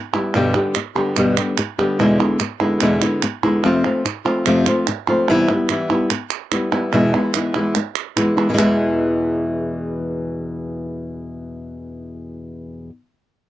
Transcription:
0.13 0.34 G3 soft
0.13 0.34 B3 medium
0.13 0.33 E4 medium
0.34 0.54 G2 loud
0.34 0.54 B2 loud
0.34 0.54 D3 medium
0.34 0.55 G3 loud
0.34 0.54 B3 medium
0.34 0.54 G4 loud
0.55 0.75 D3 soft
0.55 0.75 G3 medium
0.55 0.75 B3 medium
0.55 0.75 G4 medium
0.75 muted nylon-string guitar stroke medium
0.75 clap medium
0.95 1.16 D3 medium
0.95 1.16 G3 medium
0.95 1.16 B3 medium
0.95 1.16 G4 medium
1.16 1.36 G2 medium
1.16 1.37 B2 medium
1.16 1.37 D3 medium
1.16 1.37 G3 medium
1.16 1.37 B3 medium
1.16 1.36 G4 medium
1.16 clap medium
1.37 1.57 D3 soft
1.37 1.58 G3 soft
1.37 1.57 B3 medium
1.37 1.57 G4 medium
1.37 clap medium
1.58 muted nylon-string guitar stroke medium
1.58 clap loud
1.79 1.99 D3 soft
1.79 1.99 G3 medium
1.79 1.99 B3 medium
1.79 1.98 G4 medium
1.99 2.19 E2 medium
1.99 2.19 B2 medium
1.99 2.19 D3 medium
1.99 2.20 G#3 loud
1.99 2.19 B3 loud
1.99 2.18 E4 loud
2.19 2.39 D3 medium
2.19 2.40 G#3 medium
2.19 2.40 B3 medium
2.19 2.39 E4 medium
2.40 muted nylon-string guitar stroke medium
2.40 clap medium
2.61 2.81 D3 medium
2.61 2.81 G#3 medium
2.61 2.81 B3 medium
2.61 2.81 E4 medium
2.80 3.01 E2 medium
2.80 3.01 B2 medium
2.80 3.02 D3 medium
2.80 3.02 G#3 medium
2.80 3.02 B3 loud
2.80 3.01 E4 loud
2.80 clap medium
3.02 3.22 D3 medium
3.02 3.23 G#3 soft
3.02 3.22 B3 medium
3.02 3.22 E4 medium
3.02 clap medium
3.22 muted nylon-string guitar stroke medium
3.22 clap medium
3.43 3.64 D3 soft
3.43 3.64 G#3 medium
3.43 3.64 B3 medium
3.43 3.63 E4 medium
3.43 clap medium
3.64 3.84 F2 medium
3.64 3.84 C3 medium
3.64 3.84 F3 loud
3.64 3.84 A3 medium
3.64 3.84 C4 loud
3.64 3.83 F4 loud
3.84 4.04 F3 soft
3.84 4.04 A3 soft
3.84 4.05 C4 medium
3.84 4.04 F4 medium
4.05 muted nylon-string guitar stroke medium
4.05 clap medium
4.25 4.46 F3 medium
4.25 4.46 A3 medium
4.25 4.46 C4 medium
4.25 4.45 F4 medium
4.46 4.66 F2 medium
4.46 4.66 C3 medium
4.46 4.66 F3 medium
4.46 4.67 A3 loud
4.46 4.67 C4 medium
4.46 4.66 F4 loud
4.46 clap loud
4.66 4.87 F3 soft
4.66 4.88 A3 medium
4.66 4.87 C4 soft
4.66 4.87 F4 medium
4.66 clap medium
4.87 muted nylon-string guitar stroke medium
4.87 clap medium
5.08 5.29 F3 medium
5.08 5.29 A3 medium
5.08 5.29 C4 medium
5.08 5.28 F4 medium
5.29 5.49 C3 medium
5.29 5.49 E3 loud
5.29 5.49 G3 loud
5.29 5.50 B3 loud
5.29 5.49 E4 loud
5.50 5.69 G3 medium
5.50 5.70 B3 medium
5.50 5.70 E4 medium
5.69 5.90 E3 medium
5.69 5.90 G3 medium
5.69 5.90 B3 medium
5.69 5.89 E4 medium
5.69 clap medium
5.90 6.10 G3 medium
5.90 6.10 B3 medium
5.90 6.10 E4 medium
6.10 muted nylon-string guitar stroke medium
6.10 clap medium
6.30 clap medium
6.52 6.73 G3 medium
6.52 6.72 B3 medium
6.52 6.71 E4 medium
6.52 clap medium
6.72 6.93 G3 medium
6.72 6.93 B3 medium
6.72 6.92 E4 medium
6.93 7.13 E2 medium
6.93 7.13 B2 loud
6.93 7.13 E3 loud
6.93 7.14 G#3 loud
6.93 7.14 B3 medium
6.93 7.13 E4 loud
7.14 7.33 E3 medium
7.14 7.34 G#3 medium
7.14 7.34 B3 medium
7.14 7.34 E4 medium
7.34 7.54 E3 medium
7.34 7.55 G#3 medium
7.34 7.55 B3 medium
7.34 7.54 E4 medium
7.34 clap medium
7.55 7.75 E3 medium
7.55 7.75 G#3 soft
7.55 7.76 B3 medium
7.55 7.75 E4 medium
7.75 muted nylon-string guitar stroke medium
7.75 clap medium
7.95 clap medium
8.17 8.38 E3 medium
8.17 8.37 G#3 medium
8.17 8.36 B3 medium
8.17 8.36 E4 medium
8.17 clap medium
8.37 8.48 E3 medium
8.37 8.48 G#3 medium
8.37 8.49 B3 medium
8.37 8.49 E4 medium
8.49 8.52 B2 medium
8.49 8.53 E3 medium
8.49 8.53 G#3 medium
8.49 8.53 B3 medium
8.49 8.53 E4 medium
8.53 8.57 B2 medium
8.53 8.57 E3 medium
8.53 8.57 G#3 medium
8.53 8.57 B3 medium
8.53 8.58 E4 medium
8.58 12.89 E2 medium
8.58 12.89 B2 medium
8.58 12.89 E3 loud
8.58 12.90 G#3 loud
8.58 12.90 B3 loud
8.58 12.90 E4 loud
8.58 clap loud

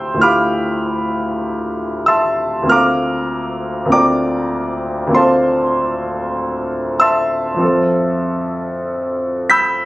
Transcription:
0.00 0.12 D2 soft
0.00 0.13 A3 soft
0.00 0.14 E4 soft
0.00 0.15 F4 soft
0.00 0.15 G4 soft
0.00 0.17 G5 medium
0.00 0.17 C6 medium
0.00 0.17 E6 medium
0.00 0.20 G6 medium
0.14 2.61 D2 soft
0.14 2.62 A3 soft
0.14 2.63 E4 soft
0.20 2.64 F4 soft
0.20 2.64 G4 soft
0.20 2.03 F5 medium
0.20 2.03 B5 medium
0.20 2.03 D6 medium
0.20 2.07 F6 medium
2.06 2.65 E5 medium
2.06 2.65 A5 medium
2.06 2.65 C6 medium
2.06 2.68 E6 medium
2.63 3.84 D2 soft
2.63 3.84 A#3 soft
2.63 3.87 C4 soft
2.67 3.88 F4 soft
2.67 3.89 A4 soft
2.67 3.90 A#5 medium
2.67 3.93 F6 medium
2.72 3.90 F5 medium
2.72 3.90 D6 medium
3.85 5.05 D2 soft
3.85 5.07 A#3 soft
3.85 5.09 C4 soft
3.90 5.11 F4 soft
3.90 5.11 A4 soft
3.90 5.12 D5 medium
3.90 5.12 G5 medium
3.90 5.12 A#5 medium
3.90 5.15 D6 medium
5.07 7.53 D2 soft
5.07 7.54 A#3 soft
5.07 7.55 C4 soft
5.12 7.56 F4 soft
5.12 7.56 A4 soft
5.12 6.35 C5 medium
5.12 6.35 F5 medium
5.12 6.35 A5 medium
5.12 6.38 C6 medium
7.00 9.47 E5 medium
7.00 9.47 A5 medium
7.00 9.47 C6 medium
7.00 9.49 E6 medium
7.54 9.85 F2 soft
7.54 9.85 F3 soft
7.54 9.85 C4 soft
7.60 9.85 F4 soft
7.60 9.85 A4 soft
9.50 9.85 B5 medium
9.50 9.85 E6 medium
9.50 9.85 G6 medium
9.50 9.85 B6 loud

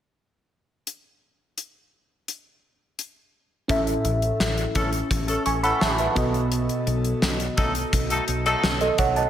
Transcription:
0.87 closed hi-hat medium
1.58 closed hi-hat medium
2.28 closed hi-hat medium
2.99 closed hi-hat soft
3.68 3.95 A1 medium
3.68 4.71 A2 medium
3.68 6.12 C#4 medium
3.68 6.12 E4 medium
3.68 6.13 A4 medium
3.68 5.43 E5 medium
3.68 kick medium
3.68 closed hi-hat medium
3.87 closed hi-hat soft
4.04 4.30 A1 medium
4.04 closed hi-hat medium
4.22 closed hi-hat soft
4.40 4.65 A1 medium
4.40 snare medium
4.58 closed hi-hat soft
4.75 5.01 A1 medium
4.75 4.90 E3 medium
4.75 4.90 A3 medium
4.75 4.90 C#4 medium
4.75 4.90 A4 medium
4.75 kick medium
4.75 closed hi-hat medium
4.93 closed hi-hat medium
5.11 5.36 A1 medium
5.11 kick medium
5.11 closed hi-hat medium
5.28 5.43 E3 medium
5.28 5.43 A3 medium
5.28 5.43 C#4 medium
5.28 5.43 A4 medium
5.28 closed hi-hat medium
5.46 5.71 A1 medium
5.46 5.63 G#5 soft
5.46 5.63 C#6 medium
5.46 closed hi-hat medium
5.63 6.08 E3 medium
5.63 6.08 A3 medium
5.63 6.08 C#4 medium
5.63 6.08 A4 medium
5.63 5.80 F#5 medium
5.63 5.80 B5 medium
5.63 closed hi-hat soft
5.81 6.07 A1 medium
5.81 5.98 E5 soft
5.81 5.98 A5 medium
5.81 snare loud
5.98 6.33 B4 soft
5.98 6.32 E5 medium
5.98 closed hi-hat soft
6.15 6.67 B1 medium
6.15 7.18 B2 medium
6.15 8.24 B3 medium
6.15 8.24 F#4 medium
6.15 8.24 A4 medium
6.15 8.25 D#5 medium
6.15 kick loud
6.15 closed hi-hat medium
6.34 closed hi-hat soft
6.52 closed hi-hat medium
6.69 closed hi-hat soft
6.87 7.12 B1 medium
6.87 closed hi-hat medium
7.05 closed hi-hat soft
7.22 7.48 B1 medium
7.22 snare loud
7.40 closed hi-hat soft
7.57 7.83 B1 medium
7.57 7.72 F#3 medium
7.57 7.72 A3 medium
7.57 7.72 D#4 medium
7.57 7.72 A4 medium
7.57 kick medium
7.57 closed hi-hat medium
7.75 closed hi-hat medium
7.93 8.18 B1 medium
7.93 kick medium
7.93 closed hi-hat medium
8.10 8.25 F#3 medium
8.10 8.25 A3 medium
8.10 8.25 D#4 medium
8.10 8.25 A4 medium
8.10 closed hi-hat medium
8.28 8.54 B1 medium
8.28 closed hi-hat medium
8.45 8.68 F#3 medium
8.45 8.68 A3 medium
8.45 8.68 D#4 medium
8.45 8.68 A4 loud
8.45 closed hi-hat soft
8.63 8.89 B1 medium
8.63 snare loud
8.81 8.98 A4 soft
8.81 8.98 D#5 medium
8.81 closed hi-hat soft
8.98 9.24 B1 medium
8.98 9.16 C#5 medium
8.98 9.15 F#5 medium
8.98 kick medium
8.98 closed hi-hat medium
9.16 9.30 D#5 medium
9.16 9.30 A5 medium
9.16 closed hi-hat soft

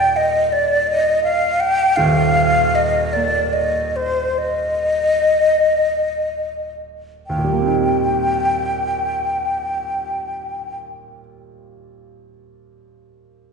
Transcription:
0.00 1.95 D#1 medium
0.00 1.95 D#2 medium
0.00 4.13 A#2 medium
0.00 0.18 G5 loud
0.16 0.54 D#5 loud
0.52 0.89 D5 loud
0.87 1.23 D#5 loud
1.24 1.62 F5 loud
1.60 1.98 G5 loud
1.96 7.23 D#1 medium
1.96 7.24 D#2 medium
1.96 2.77 F5 loud
2.75 3.15 D#5 loud
3.13 7.28 A#3 medium
3.13 3.55 D5 loud
3.53 3.98 D#5 loud
3.96 4.40 C5 loud
4.38 6.75 D#5 loud
7.27 10.82 D#2 medium
7.27 10.79 G5 medium
7.37 10.89 A#2 medium
7.44 10.97 G3 medium
7.52 11.05 A#3 medium
7.60 11.12 C4 medium
7.67 11.19 D#4 medium

